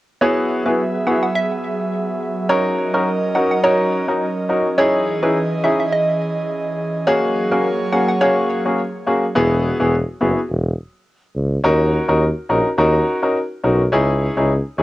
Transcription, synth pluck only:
0.21 C#5
0.65 B4
1.07 F#5
1.23 F#5
1.35 E5
2.50 C#5
2.94 A#4
3.35 F#5
3.51 F#5
3.64 C#5
4.78 C#5
5.23 B4
5.64 E5
5.80 E5
5.92 D#5
7.07 C#5
7.51 A#4
7.93 F#5
8.08 F#5
8.21 C#5

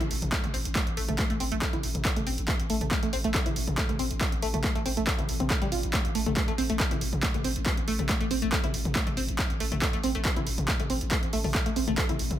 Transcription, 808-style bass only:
0.00 A1
0.10 A1
0.22 A1
0.43 A1
0.54 A1
0.65 A1
0.87 A1
0.97 A1
1.08 A1
1.30 A1
1.40 A1
1.52 A1
1.73 A1
1.83 A1
1.95 A1
2.16 A1
2.26 A1
2.38 A1
2.59 A1
2.70 A1
2.81 A1
3.03 A1
3.13 A1
3.24 A1
3.46 A1
3.56 A1
3.67 A1
3.89 A1
3.99 A1
4.11 A1
4.32 A1
4.42 A1
4.54 A1
4.75 A1
4.86 A1
4.97 A1
5.19 A1
5.29 A1
5.40 A1
5.62 A1
5.72 A1
5.83 A1
6.05 A1
6.15 A1
6.26 A1
6.48 A1
6.58 A1
6.70 A1
6.91 A1
7.01 A1
7.13 A1
7.34 A1
7.45 A1
7.56 A1
7.78 A1
7.88 A1
7.99 A1
8.21 A1
8.31 A1
8.42 A1
8.64 A1
8.74 A1
8.85 A1
9.07 A1
9.17 A1
9.29 A1
9.50 A1
9.60 A1
9.72 A1
9.93 A1
10.03 A1
10.15 A1
10.36 A1
10.47 A1
10.58 A1
10.79 A1
10.90 A1
11.01 A1
11.23 A1
11.33 A1
11.44 A1
11.66 A1
11.76 A1
11.87 A1
12.09 A1
12.19 A1
12.30 A1

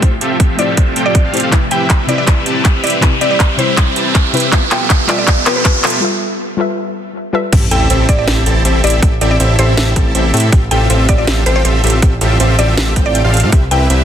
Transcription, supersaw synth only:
0.21 C4 F4 G4 A4 E5
0.40 F4 E5
0.59 C4 F4 G4 A4 E5
0.77 F4 G4 A4 E5
0.96 C4 F4 G4 A4 G5
1.24 C4 F4 G4 A4 F5
1.43 C4 F4 G4 A4 F5
1.71 C4 E4 G4 B4 E5
2.09 C4 E4 G4 B4 E5
2.27 E4
2.46 C4 E4 G4 B4 A5
2.84 C4 E4 G4 B4 E5
3.02 C4 E4 E5
3.21 C4 E4 G4 B4 E5
3.59 C4 E4 G4 B4 E5
3.77 C4 E4 B4 E5
3.96 C4 E4 G4 B4 A5
4.34 C4 E4 G4 B4 E5
4.52 B3
4.71 B3 F4 G4 A4 E5
5.09 B3 F4 G4 A4 E5
5.46 B3 F4 G4 A4 G5
5.65 B3 G4 A4 E5
5.84 B3 F4 G4 A4 E5
7.52 C4 E4 G4 A4 E5
7.71 C4 E4 G4 A4 E5
7.90 C4 E4 G4 A4 E5
8.09 C4 E4 G4 A4 E5
8.27 C4 E4 G4 A4 E5
8.46 C4 E4 G4 A4 A5
8.65 C4 E4 G4 A4 E5
8.84 C4 E4 G4 A4 E5
9.21 C4 E4 G4 A4 E5
9.40 C4 E4 G4 A4 E5
9.59 C4 E4 G4 A4 E5
9.77 C4 E4 G4 A4 E5
9.96 C4 E4 G4 A4 A5
10.15 C4 E4 G4 A4 E5
10.34 C4 E4 G4 A4 E5
10.52 C4 G4
10.71 C4 F4 G4 A4 E5
10.90 C4 F4 G4 A4 E5
11.09 C4 F4 G4 A4 E5
11.27 C4 F4 G4 A4 E5
11.46 C4 F4 G4 A4 G5
11.65 C4 F4 G4 A4 E5
11.84 C4 F4 G4 A4 E5
12.21 C4 F4 G4 A4 E5
12.40 C4 F4 G4 A4 E5
12.59 C4 F4 G4 A4 E5
12.77 C4 F4 G4 A4 E5
12.96 C4 F4 G4 A4 G5
13.24 C4 F4 G4 A4 F5
13.43 C4 F4 G4 A4 F5
13.52 C4 E4 G4 B4 E5
13.71 C4 E4 G4 B4 E5
13.90 C4 E4 G4 B4 E5

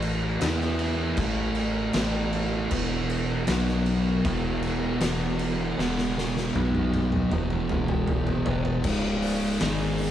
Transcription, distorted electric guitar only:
Already playing: A2 E3 A3
0.41 E3 B3 E4
1.18 A2 E3 A3
1.94 A2 E3 A3
2.71 E2 B2 E3
3.48 B2 F#3 B3
4.25 E2 B2 E3
5.01 E2 B2 E3
5.78 E2 B2 E3
6.55 B2 F#3 B3
7.31 E2 B2 E3
8.46 E2 B2 E3
8.85 C#2 G#2 C#3
9.61 G#2 D#3 G#3

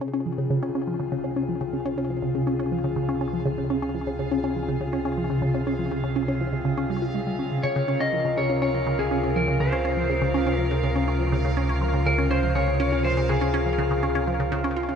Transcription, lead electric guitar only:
7.63 C#5
8.00 D#5
8.38 C#5
8.62 C#5
8.99 G#4
9.36 A#4
9.60 C5
10.56 A#4
12.06 A#4
12.31 C5
12.55 C#5
13.04 C5
13.29 G#4

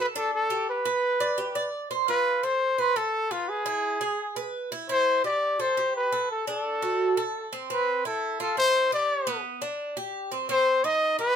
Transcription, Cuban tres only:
0.00 A4
0.16 D4
0.50 G4
0.85 B4
1.20 D5
1.38 G4
1.55 D5
1.91 C5
2.08 F4
2.43 A4
2.78 C5
2.96 A4
3.31 B4
3.66 E4
4.01 G#4
4.36 B4
4.72 E4
4.89 E4
5.24 G4
5.60 A4
5.77 G4
6.12 A4
6.47 D4
6.82 F#4
7.17 A4
7.53 C4
7.70 C4
8.05 E4
8.40 F4
8.57 E4
8.92 G4
9.27 B3
9.62 D4
9.97 G4
10.32 C4
10.49 C4
10.84 D#4
11.19 G4

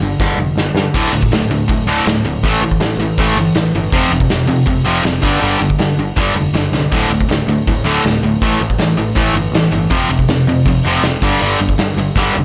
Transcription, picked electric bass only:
0.01 G1
0.19 G1
0.38 F1
0.56 G1
0.75 G2
0.94 D1
1.13 D1
1.31 D1
1.50 D2
1.69 D1
1.87 D1
2.07 D1
2.23 D1
2.43 A1
2.61 A1
2.80 A2
2.97 A1
3.19 A1
3.35 G1
3.56 A1
3.74 G1
3.92 F1
4.11 F1
4.31 F1
4.49 F2
4.67 F1
4.86 F1
5.05 F1
5.23 G1
5.42 G1
5.61 G1
5.80 G2
5.98 G1
6.17 G1
6.35 F1
6.54 G1
6.72 C2
6.92 D1
7.10 D1
7.28 D1
7.47 D2
7.67 D1
7.85 D1
8.05 D1
8.23 D1
8.42 A1
8.61 A1
8.79 A2
8.98 A1
9.16 A1
9.34 G1
9.52 A1
9.72 G1
9.90 F1
10.09 F1
10.29 F1
10.47 F2
10.65 F1
10.85 F1
11.03 F1
11.22 G1
11.42 G1
11.60 G1
11.79 G2
11.97 G1
12.16 G1
12.36 F1

